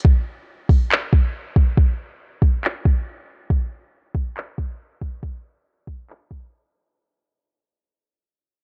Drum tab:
HH |---o----|--------|--------|--------|
CP |----x---|----x---|----x---|----x---|
BD |o--o-o-o|o--o-o--|o--o-o-o|o--o-o--|

HH |---o----|
CP |--------|
BD |--------|